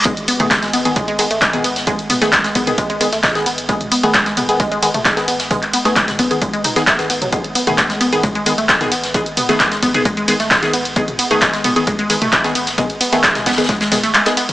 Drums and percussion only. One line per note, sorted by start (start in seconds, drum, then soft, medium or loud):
0.05 kick loud
0.05 closed hi-hat medium
0.05 ride medium
0.17 closed hi-hat medium
0.28 closed hi-hat medium
0.28 open hi-hat loud
0.28 ride medium
0.40 closed hi-hat medium
0.40 mid tom medium
0.51 kick loud
0.51 snare loud
0.51 clap loud
0.51 closed hi-hat medium
0.51 ride medium
0.63 snare soft
0.63 closed hi-hat medium
0.73 closed hi-hat medium
0.73 open hi-hat medium
0.73 ride medium
0.85 closed hi-hat medium
0.96 kick loud
0.96 closed hi-hat medium
0.96 mid tom medium
0.96 ride medium
1.08 closed hi-hat medium
1.18 closed hi-hat medium
1.18 open hi-hat loud
1.18 ride medium
1.31 closed hi-hat medium
1.41 kick loud
1.41 snare loud
1.41 clap loud
1.41 closed hi-hat medium
1.41 ride medium
1.53 snare soft
1.53 closed hi-hat medium
1.53 mid tom medium
1.64 closed hi-hat medium
1.64 open hi-hat medium
1.64 ride medium
1.76 snare medium
1.76 closed hi-hat medium
1.87 kick loud
1.87 closed hi-hat medium
1.87 ride medium
1.99 closed hi-hat medium
1.99 closed hi-hat soft
2.10 closed hi-hat medium
2.10 open hi-hat loud
2.10 mid tom medium
2.10 ride medium
2.21 snare soft
2.21 closed hi-hat medium
2.33 kick loud
2.33 snare loud
2.33 clap loud
2.33 closed hi-hat medium
2.33 ride medium
2.44 snare soft
2.44 closed hi-hat medium
2.55 kick medium
2.55 closed hi-hat medium
2.55 open hi-hat loud
2.55 ride medium
2.67 closed hi-hat medium
2.67 closed hi-hat soft
2.67 mid tom medium
2.77 kick loud
2.77 closed hi-hat medium
2.77 ride medium
2.90 closed hi-hat medium
3.01 closed hi-hat medium
3.01 open hi-hat loud
3.01 ride medium
3.12 snare soft
3.12 closed hi-hat medium
3.23 kick loud
3.23 snare loud
3.23 clap loud
3.23 closed hi-hat medium
3.23 mid tom medium
3.23 ride medium
3.35 snare medium
3.35 closed hi-hat medium
3.46 closed hi-hat medium
3.46 open hi-hat loud
3.46 ride medium
3.58 closed hi-hat medium
3.69 kick loud
3.69 closed hi-hat medium
3.69 ride medium
3.81 closed hi-hat medium
3.81 mid tom medium
3.91 closed hi-hat medium
3.91 open hi-hat loud
3.91 ride medium
4.03 closed hi-hat medium
4.13 kick loud
4.13 snare loud
4.13 clap loud
4.13 closed hi-hat medium
4.13 ride medium
4.26 snare soft
4.26 closed hi-hat medium
4.37 closed hi-hat medium
4.37 open hi-hat loud
4.37 mid tom medium
4.37 ride medium
4.49 closed hi-hat medium
4.60 kick loud
4.60 closed hi-hat medium
4.60 ride medium
4.72 closed hi-hat medium
4.82 closed hi-hat medium
4.82 open hi-hat loud
4.82 ride medium
4.94 closed hi-hat medium
4.94 mid tom medium
5.05 kick loud
5.05 snare loud
5.05 clap loud
5.05 closed hi-hat medium
5.05 ride medium
5.17 snare soft
5.17 closed hi-hat medium
5.28 closed hi-hat medium
5.28 open hi-hat loud
5.28 ride medium
5.39 snare medium
5.39 closed hi-hat medium
5.51 kick loud
5.51 closed hi-hat medium
5.51 mid tom medium
5.51 ride medium
5.62 clap soft
5.62 closed hi-hat soft
5.62 closed hi-hat medium
5.73 closed hi-hat medium
5.73 open hi-hat loud
5.73 ride medium
5.85 snare soft
5.85 closed hi-hat soft
5.96 kick loud
5.96 snare loud
5.96 clap loud
5.96 closed hi-hat medium
5.96 ride medium
6.08 snare medium
6.08 closed hi-hat medium
6.08 mid tom medium
6.19 kick medium
6.19 closed hi-hat medium
6.19 open hi-hat loud
6.19 ride medium
6.30 closed hi-hat soft
6.42 kick loud
6.42 closed hi-hat medium
6.42 ride medium
6.53 closed hi-hat medium
6.64 closed hi-hat medium
6.64 open hi-hat loud
6.64 mid tom medium
6.64 ride medium
6.76 snare soft
6.76 closed hi-hat medium
6.87 kick loud
6.87 snare loud
6.87 clap loud
6.87 closed hi-hat medium
6.87 ride medium
6.99 snare medium
6.99 closed hi-hat medium
7.10 closed hi-hat medium
7.10 open hi-hat loud
7.10 ride medium
7.22 closed hi-hat medium
7.22 mid tom medium
7.32 kick loud
7.32 closed hi-hat medium
7.32 ride medium
7.44 closed hi-hat soft
7.55 closed hi-hat medium
7.55 open hi-hat loud
7.55 ride medium
7.67 closed hi-hat medium
7.67 mid tom medium
7.78 kick loud
7.78 snare loud
7.78 clap loud
7.78 closed hi-hat medium
7.78 ride medium
7.89 snare medium
7.89 closed hi-hat medium
8.01 closed hi-hat medium
8.01 open hi-hat medium
8.01 ride medium
8.13 closed hi-hat medium
8.23 kick loud
8.23 closed hi-hat medium
8.23 mid tom medium
8.23 ride medium
8.35 closed hi-hat soft
8.46 closed hi-hat medium
8.46 open hi-hat loud
8.46 ride medium
8.58 closed hi-hat medium
8.69 kick loud
8.69 snare loud
8.69 clap loud
8.69 closed hi-hat medium
8.69 ride medium
8.81 snare soft
8.81 closed hi-hat soft
8.81 mid tom medium
8.92 closed hi-hat medium
8.92 open hi-hat loud
8.92 ride medium
9.04 snare medium
9.04 closed hi-hat medium
9.14 kick loud
9.14 closed hi-hat medium
9.14 ride medium
9.26 closed hi-hat soft
9.37 closed hi-hat medium
9.37 open hi-hat loud
9.37 mid tom medium
9.37 ride medium
9.49 snare soft
9.49 closed hi-hat medium
9.60 kick loud
9.60 snare loud
9.60 clap loud
9.60 closed hi-hat medium
9.60 ride medium
9.72 snare medium
9.72 closed hi-hat soft
9.83 kick medium
9.83 closed hi-hat medium
9.83 open hi-hat medium
9.83 ride medium
9.94 closed hi-hat soft
9.94 mid tom medium
10.05 kick loud
10.05 closed hi-hat medium
10.05 ride medium
10.17 closed hi-hat soft
10.28 closed hi-hat medium
10.28 open hi-hat loud
10.28 ride medium
10.40 snare soft
10.40 closed hi-hat medium
10.50 kick loud
10.50 snare loud
10.50 clap loud
10.50 closed hi-hat medium
10.50 mid tom medium
10.50 ride medium
10.63 snare medium
10.63 closed hi-hat medium
10.73 closed hi-hat medium
10.73 open hi-hat medium
10.73 ride medium
10.85 closed hi-hat medium
10.96 kick loud
10.96 closed hi-hat medium
10.96 ride medium
11.08 closed hi-hat soft
11.08 mid tom medium
11.19 closed hi-hat medium
11.19 open hi-hat loud
11.19 ride medium
11.31 closed hi-hat medium
11.41 kick loud
11.41 snare loud
11.41 clap loud
11.41 closed hi-hat medium
11.41 ride medium
11.53 snare soft
11.53 closed hi-hat medium
11.64 closed hi-hat medium
11.64 open hi-hat medium
11.64 mid tom medium
11.64 ride medium
11.76 closed hi-hat medium
11.87 kick loud
11.87 closed hi-hat medium
11.87 ride medium
11.99 closed hi-hat soft
12.10 closed hi-hat medium
12.10 open hi-hat loud
12.10 ride medium
12.22 closed hi-hat medium
12.22 mid tom medium
12.32 kick loud
12.32 snare loud
12.32 clap loud
12.32 closed hi-hat medium
12.32 ride medium
12.44 snare soft
12.44 closed hi-hat medium
12.55 closed hi-hat medium
12.55 open hi-hat medium
12.55 ride medium
12.67 snare medium
12.67 closed hi-hat medium
12.78 kick loud
12.78 closed hi-hat medium
12.78 mid tom medium
12.78 ride medium
12.90 closed hi-hat medium
12.90 closed hi-hat soft
13.01 closed hi-hat medium
13.01 open hi-hat loud
13.01 ride medium
13.12 snare soft
13.12 closed hi-hat medium
13.23 kick loud
13.23 snare loud
13.23 clap loud
13.23 closed hi-hat medium
13.23 ride medium
13.35 snare medium
13.35 closed hi-hat medium
13.35 mid tom medium
13.46 kick medium
13.46 snare medium
13.46 closed hi-hat medium
13.46 open hi-hat medium
13.46 ride medium
13.52 snare medium
13.52 closed hi-hat medium
13.57 snare loud
13.57 closed hi-hat medium
13.63 snare loud
13.63 closed hi-hat medium
13.69 kick loud
13.69 snare loud
13.69 closed hi-hat medium
13.69 ride medium
13.81 snare loud
13.81 closed hi-hat medium
13.92 snare loud
13.92 closed hi-hat medium
13.92 open hi-hat loud
13.92 mid tom medium
13.92 ride medium
14.03 snare soft
14.03 closed hi-hat medium
14.14 clap loud
14.14 closed hi-hat medium
14.14 ride medium
14.26 snare loud
14.26 closed hi-hat medium
14.37 snare soft
14.37 open hi-hat medium
14.37 ride medium
14.49 closed hi-hat medium
14.49 mid tom medium